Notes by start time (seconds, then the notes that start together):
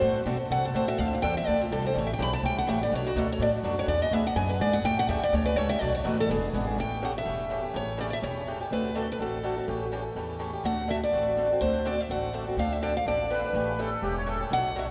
Already playing: C5
0.01 A2 D3 A3 C4 F#4 A4
0.26 B2 D3 A3 C4 F#4 A4
0.50 C3 D3 A3 C4 F#4 A4 F#5
0.65 A4
0.74 A2 D3 A3 C4 F#4 A4 C5
0.88 C4 F#4 A4 E5
0.98 D2 D3 F3 C4 D4 A4 F5
1.08 E5
1.15 F5
1.22 E2 D3 F3 C4 D4 A4 G5
1.37 E5
1.47 D2 D3 F3 C4 D4 A4 D5
1.61 F4
1.71 C2 D3 F3 C4 D4 A4
1.85 C4 D4 A4 C5
1.94 A1 C#3 E3 A3 C#4 G4
1.98 C#5
2.07 E5
2.14 G5
2.18 B1 C#3 E3 A3 C#4 G4
2.22 B5
2.33 A5
2.43 C#2 C#3 E3 A3 C#4 G4 G5
2.58 F#5
2.67 A1 C#3 E3 A3 C#4 G4 E5
2.80 A3 C#4 G4 D5
2.91 B1 B2 F#3 A3 D4 F#4
2.95 C#5
3.07 F#4
3.15 D2 B2 F#3 A3 D4 F#4 A4
3.32 C#5
3.39 A2 B2 F#3 A3 D4 F#4 D5
3.63 F#2 B2 F#3 A3 D4 F#4
3.78 A3 D4 F#4 C#5
3.87 E2 E3 B3 D4 G#4 D5
4.02 D#5
4.11 D2 E3 B3 D4 G#4 E5
4.27 F#5
4.36 F#2 E3 B3 D4 G#4 G#5
4.49 B4
4.60 G#2 E3 B3 D4 G#4 D5
4.73 B3 D4 G#4 F#5
4.84 A2 C#3 E3 A3 C#4 G4 G5
4.99 F#5
5.08 E2 C#3 E3 A3 C#4 G4 E5
5.22 D5, muted upright bass stroke
5.32 D2 C#3 E3 A3 C#4 G4 C#5
5.46 B4
5.56 C#2 C#3 E3 A3 C#4 G4 C#5
5.69 A3 C#4 G4 E5
5.80 B1 B2 F#3 A3 D4 F#4 D5
5.95 C#5
6.04 A1 B2 F#3 A3 D4 F#4 B4
6.20 A4
6.29 E1 E3 B3 D4 G#4
6.53 G#1 E3 B3 D4 G#4
6.67 B3 D4 G#4
6.78 A1 C#3 E3 A3 C#4 G4 G5
7.01 C#3 E3 A3 C#4 G4 F#5
7.18 E5
7.25 E1 C#3 E3 A3 C#4 G4
7.50 C#3 E3 A3 C#4 G4
7.62 A3 C#4 G4
7.74 A1 C#3 E3 A3 C#4 G4 C#5
7.97 C#3 E3 A3 C#4 G4 D5
8.10 D5 E5
8.22 E1 C#3 E3 A3 C#4 G4 C#5
8.47 C#3 E3 A3 C#4 G4
8.61 A3 C#4 G4
8.71 D2 D3 A3 C4 F#4 A4 B4
8.94 D3 A3 C4 F#4 A4
9.12 B4
9.19 A1 D3 A3 C4 F#4 A4
9.43 D3 A3 C4 F#4 A4
9.56 C4 F#4 A4
9.68 A1 C#3 E3 A3 C#4 G4
9.92 C#3 E3 A3 C#4 G4
10.15 E2 C#3 E3 A3 C#4 G4
10.39 C#3 E3 A3 C#4 G4
10.53 A3 C#4 G4
10.64 D2 D3 A3 C4 F#4 A4 F#5
10.88 D3 A3 C4 F#4 A4 E5
11.03 D5
11.12 A1 D3 A3 C4 F#4 A4
11.37 D3 A3 C4 F#4 A4
11.51 C4 F#4 A4
11.61 D2 D3 A3 C4 F#4 A4 C5
11.85 D3 A3 C4 F#4 A4 D5
12.01 E5
12.09 A1 D3 A3 C4 F#4 A4 F#5
12.33 D3 A3 C4 F#4 A4
12.46 C4 F#4 A4
12.57 D2 D3 F3 C4 D4 A4 F5
12.72 E5
12.82 D3 F3 C4 D4 A4 D5
12.97 F5
13.05 A1 D3 F3 C4 D4 A4 D5
13.30 D3 F3 C4 D4 A4 B4
13.44 C4 D4 A4
13.53 A1 C#3 E3 A3 C#4 G4
13.79 C#3 E3 A3 C#4 G4 A4
14.02 E1 C#3 E3 A3 C#4 G4
14.18 C#5
14.26 C#3 E3 A3 C#4 G4 A4
14.40 A3 C#4 G4
14.51 B1 B2 F#3 A3 D4 F#4 F#5
14.75 B2 F#3 A3 D4 F#4 E5